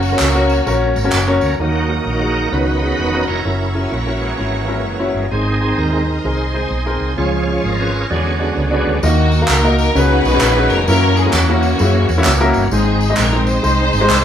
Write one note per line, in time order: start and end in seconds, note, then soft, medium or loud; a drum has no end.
0.00 0.13 F#1 loud
0.00 1.56 F#3 medium
0.00 1.10 A#3 medium
0.00 1.56 A#3 medium
0.00 1.10 C#4 medium
0.00 1.56 C#4 medium
0.00 1.13 F#4 loud
0.00 1.56 A#4 medium
0.00 tambourine medium
0.12 0.23 C#4 medium
0.12 0.23 F#4 medium
0.12 0.23 A#4 medium
0.12 0.23 C#5 medium
0.19 0.60 C#2 medium
0.19 clap loud
0.19 tambourine loud
0.34 0.56 C#4 medium
0.34 0.56 F#4 medium
0.34 0.56 A#4 medium
0.34 0.56 C#5 medium
0.49 tambourine medium
0.66 0.92 A#1 medium
0.66 0.93 C#4 medium
0.66 0.93 F#4 medium
0.66 0.93 A#4 medium
0.66 0.93 C#5 loud
0.66 tambourine medium
0.96 1.10 G#1 medium
0.96 tambourine medium
1.04 1.15 C#4 medium
1.04 1.16 F#4 medium
1.04 1.16 A#4 medium
1.04 1.16 C#5 medium
1.12 1.38 F#1 medium
1.12 clap loud
1.12 tambourine loud
1.27 1.49 C#4 medium
1.27 1.49 F#4 medium
1.27 1.49 A#4 medium
1.27 1.49 C#5 loud
1.41 1.57 D2 medium
1.41 tambourine medium
1.59 1.99 D#2 medium
1.59 2.48 D#3 soft
1.59 2.32 D#3 soft
1.59 2.49 F#3 soft
1.59 1.77 A#3 medium
1.59 2.49 A#3 medium
1.59 1.77 D#4 medium
1.59 2.05 D#4 medium
1.59 1.77 F#4 medium
1.59 2.05 F#4 medium
1.59 1.77 A#4 medium
1.59 2.52 D#5 medium
1.59 5.28 F#5 medium
1.59 2.52 A#5 medium
1.59 2.52 D#6 medium
1.89 2.04 A#3 medium
1.89 2.04 D#4 medium
1.89 2.04 F#4 medium
1.89 2.04 A#4 medium
2.06 2.45 A#1 medium
2.06 2.49 D#4 medium
2.06 2.49 F#4 medium
2.06 2.54 A#4 medium
2.21 2.42 A#3 medium
2.21 2.42 D#4 medium
2.21 2.42 F#4 medium
2.21 2.42 G#4 medium
2.51 2.92 C#2 medium
2.51 3.25 C#3 soft
2.51 3.24 D#3 soft
2.51 3.24 F#3 soft
2.51 3.25 B3 soft
2.51 2.70 C#4 medium
2.51 3.42 D#4 medium
2.51 2.70 D#4 medium
2.51 3.42 F#4 medium
2.51 2.70 F#4 medium
2.51 3.25 B4 medium
2.51 2.70 B4 medium
2.51 3.45 D#5 medium
2.51 3.45 B5 medium
2.51 5.30 C#6 medium
2.82 2.97 C#4 medium
2.82 2.97 D#4 medium
2.82 2.97 F#4 medium
2.82 2.97 G#4 medium
2.99 3.24 E1 medium
3.14 3.35 C#4 medium
3.14 3.35 D#4 medium
3.14 3.35 F#4 medium
3.14 3.35 A#4 medium
3.28 3.43 F1 medium
3.28 3.90 C#4 medium
3.28 4.17 E4 medium
3.28 3.72 A#4 medium
3.45 3.85 F#1 medium
3.45 3.63 C#4 medium
3.45 3.63 E4 medium
3.45 3.63 F#4 medium
3.45 3.63 A#4 medium
3.45 5.30 E5 medium
3.45 5.30 A#5 medium
3.74 3.90 C#4 medium
3.74 3.90 E4 medium
3.74 3.90 F#4 medium
3.74 3.90 G#4 medium
3.74 3.90 A#4 medium
3.91 4.32 A#1 medium
3.91 4.20 A#3 soft
3.91 5.10 C#4 soft
3.91 5.10 F#4 medium
4.06 4.28 C#4 medium
4.06 4.28 E4 medium
4.06 4.28 F#4 medium
4.06 4.28 A#4 medium
4.20 5.27 E3 soft
4.20 5.27 G#3 soft
4.20 5.27 A#3 soft
4.38 4.85 G#1 medium
4.38 4.56 C#4 medium
4.38 4.56 E4 medium
4.38 4.56 F#4 medium
4.38 4.56 C#5 medium
4.67 4.83 C#4 medium
4.67 4.83 E4 medium
4.67 4.83 F#4 medium
4.67 4.83 A#4 medium
4.85 5.10 F#1 medium
4.99 5.21 C#4 medium
4.99 5.21 E4 medium
4.99 5.21 F#4 medium
4.99 5.21 C#5 medium
5.14 5.29 G1 medium
5.31 5.71 G#1 medium
5.31 6.04 G#2 medium
5.31 6.04 D#3 soft
5.31 6.04 G#3 soft
5.31 5.49 C4 medium
5.31 6.04 C4 medium
5.31 5.77 D#4 medium
5.31 5.49 D#4 medium
5.31 5.49 G#4 medium
5.31 5.80 G#4 medium
5.31 5.49 C5 medium
5.31 7.16 C5 medium
5.31 7.16 D#5 medium
5.31 8.99 G#5 medium
5.31 7.16 C6 medium
5.61 5.76 C4 medium
5.61 5.76 D#4 medium
5.61 5.76 G#4 medium
5.61 5.76 C5 medium
5.78 6.18 D#2 medium
5.78 6.24 D#4 medium
5.78 6.26 A#4 medium
5.92 6.14 C4 medium
5.92 6.14 D#4 medium
5.92 6.14 G#4 medium
5.92 6.14 C5 medium
6.24 6.64 C2 medium
6.24 6.42 C4 medium
6.24 6.42 D#4 medium
6.24 7.14 D#4 medium
6.24 6.42 G#4 medium
6.24 7.14 G#4 medium
6.24 6.42 A#4 medium
6.24 7.14 C5 medium
6.54 6.69 D#3 soft
6.54 6.69 G#3 soft
6.54 6.69 C4 medium
6.54 6.70 C4 soft
6.54 6.69 D#4 medium
6.54 6.69 G#4 medium
6.54 6.69 C5 medium
6.70 6.96 B1 medium
6.86 7.07 C4 medium
6.86 7.07 D#4 medium
6.86 7.07 G#4 medium
6.86 7.07 A#4 medium
7.01 7.15 C2 medium
7.17 7.57 C#2 medium
7.17 7.90 C#3 medium
7.17 7.89 F3 soft
7.17 7.90 G#3 soft
7.17 7.35 C#4 medium
7.17 7.63 C#4 soft
7.17 7.35 F4 medium
7.17 7.63 F4 medium
7.17 8.07 G#4 medium
7.17 7.35 G#4 medium
7.17 8.09 C#5 medium
7.17 7.66 C#5 medium
7.17 7.35 C#5 medium
7.17 8.09 F5 medium
7.17 9.01 C#6 medium
7.47 7.62 C#4 medium
7.47 7.62 F4 medium
7.47 7.62 G#4 medium
7.47 7.62 C#5 medium
7.64 8.03 G#1 medium
7.64 8.07 C#4 medium
7.64 8.07 F4 medium
7.64 8.07 A#4 medium
7.79 8.00 C#4 medium
7.79 8.00 F4 medium
7.79 8.00 G#4 soft
7.79 8.01 B4 medium
8.10 8.50 E2 medium
8.10 8.99 D3 soft
8.10 8.83 E3 medium
8.10 8.99 F#3 soft
8.10 8.99 G#3 soft
8.10 8.99 B3 soft
8.10 8.99 C#4 medium
8.10 8.28 D4 medium
8.10 8.99 D4 soft
8.10 8.28 F#4 medium
8.10 8.82 G#4 medium
8.10 8.28 G#4 medium
8.10 9.02 C#5 medium
8.10 8.28 C#5 medium
8.10 9.02 F#5 medium
8.40 8.55 D4 medium
8.40 8.55 F#4 soft
8.40 8.55 G#4 medium
8.40 8.55 D5 medium
8.57 8.82 C#2 medium
8.71 8.92 D4 medium
8.71 8.93 F#4 medium
8.71 8.93 G#4 medium
8.71 8.93 B4 medium
8.86 9.00 D2 medium
9.03 9.42 D#2 loud
9.03 9.75 D#3 medium
9.03 9.93 A#3 medium
9.03 9.29 A#3 medium
9.03 9.92 A#3 medium
9.03 9.93 D#4 medium
9.03 9.29 D#4 medium
9.03 9.92 D#4 medium
9.03 9.94 F#4 medium
9.03 9.29 F#4 medium
9.03 9.47 F#4 loud
9.03 9.29 A#4 medium
9.03 9.29 D#5 medium
9.03 tambourine medium
9.32 tambourine medium
9.41 9.52 A#3 medium
9.41 9.52 D#4 medium
9.41 9.52 F#4 medium
9.41 9.52 A#4 medium
9.41 9.52 F5 medium
9.48 9.88 C#2 loud
9.48 9.79 A#4 loud
9.48 clap loud
9.48 tambourine loud
9.64 9.85 A#3 medium
9.64 9.85 D#4 medium
9.64 9.85 F#4 medium
9.64 9.85 A#4 medium
9.64 9.85 D#5 medium
9.79 9.95 A#4 loud
9.79 tambourine medium
9.95 10.20 C#2 loud
9.95 10.67 C#3 medium
9.95 10.87 D#3 medium
9.95 10.86 G#3 medium
9.95 10.86 B3 medium
9.95 10.21 C#4 medium
9.95 10.86 C#4 medium
9.95 10.21 D#4 medium
9.95 10.84 D#4 medium
9.95 10.84 F#4 medium
9.95 10.21 F#4 medium
9.95 10.86 F#4 medium
9.95 10.21 G#4 medium
9.95 10.71 B4 loud
9.95 10.22 B4 medium
9.95 tambourine medium
10.24 10.39 B1 medium
10.24 tambourine medium
10.33 10.44 C#4 medium
10.33 10.44 D#4 medium
10.33 10.44 F#4 medium
10.33 10.44 G#4 medium
10.33 10.44 C#5 medium
10.41 10.66 A#1 loud
10.41 clap loud
10.41 tambourine loud
10.56 10.77 C#4 medium
10.56 10.77 D#4 medium
10.56 10.78 F#4 medium
10.56 10.78 G#4 medium
10.56 10.78 B4 medium
10.70 10.85 F1 medium
10.70 10.87 A#4 loud
10.70 tambourine medium
10.88 11.27 F#2 loud
10.88 12.68 E3 medium
10.88 12.68 F#3 medium
10.88 11.13 A#3 medium
10.88 12.68 A#3 medium
10.88 12.68 C#4 medium
10.88 11.13 C#4 medium
10.88 11.33 C#4 medium
10.88 11.76 E4 medium
10.88 11.14 E4 medium
10.88 12.68 F#4 medium
10.88 11.14 F#4 medium
10.88 11.15 A#4 loud
10.88 11.14 A#4 medium
10.88 tambourine medium
11.17 11.34 G#4 loud
11.17 tambourine medium
11.26 11.36 A#3 medium
11.26 11.37 C#4 medium
11.26 11.37 E4 medium
11.26 11.37 F#4 medium
11.26 11.37 A#4 medium
11.33 11.73 E2 loud
11.33 12.52 A#3 medium
11.33 12.52 C#4 medium
11.33 12.55 F#4 loud
11.33 clap loud
11.33 tambourine loud
11.49 11.70 A#3 medium
11.49 11.70 C#4 medium
11.49 11.70 E4 medium
11.49 11.70 F#4 medium
11.49 11.70 A#4 medium
11.63 tambourine medium
11.79 12.05 F#2 loud
11.79 12.05 A#3 medium
11.79 12.06 C#4 medium
11.79 12.06 E4 medium
11.79 12.06 F#4 medium
11.79 12.06 G#4 medium
11.79 tambourine medium
12.09 12.23 E2 medium
12.09 tambourine medium
12.18 12.28 A#3 medium
12.18 12.28 C#4 medium
12.18 12.29 E4 medium
12.18 12.29 F#4 medium
12.18 12.29 C#5 loud
12.24 12.51 C#2 loud
12.24 clap loud
12.24 tambourine loud
12.40 12.61 A#3 medium
12.40 12.61 C#4 medium
12.40 12.61 E4 medium
12.40 12.62 F#4 medium
12.40 12.62 A#4 loud
12.54 12.70 G1 medium
12.54 tambourine medium
12.71 13.11 G#1 loud
12.71 13.44 G#2 medium
12.71 12.98 G#3 medium
12.71 14.24 G#3 medium
12.71 12.98 C4 medium
12.71 13.60 C4 medium
12.71 14.24 C4 medium
12.71 12.79 C#4 medium
12.71 13.47 D#4 medium
12.71 12.98 D#4 medium
12.71 12.98 G#4 medium
12.71 13.16 G#4 loud
12.71 12.98 C5 medium
12.71 tambourine medium
12.78 14.24 D#4 medium
13.01 tambourine medium
13.10 13.21 G#3 medium
13.10 13.21 C4 medium
13.10 13.20 D#4 medium
13.10 13.21 G#4 medium
13.10 13.21 D#5 medium
13.17 13.57 A#1 loud
13.17 13.48 A#4 loud
13.17 clap medium
13.17 tambourine loud
13.33 13.54 G#3 medium
13.33 13.54 C4 medium
13.33 13.54 D#4 medium
13.33 13.54 G#4 medium
13.33 13.54 C5 medium
13.47 14.24 D#4 medium
13.47 14.24 G#4 medium
13.47 14.24 C5 loud
13.47 tambourine medium
13.63 13.89 C2 loud
13.63 13.89 G#3 medium
13.63 13.90 C4 medium
13.63 13.90 D#4 medium
13.63 13.90 G#4 medium
13.63 13.90 C5 medium
13.63 tambourine medium
13.93 14.08 G#1 medium
13.93 tambourine medium
14.01 14.12 G#3 medium
14.01 14.12 C4 medium
14.01 14.13 D#4 medium
14.01 14.13 G#4 medium
14.01 14.13 C5 loud
14.09 14.24 C2 loud
14.09 clap loud
14.09 tambourine loud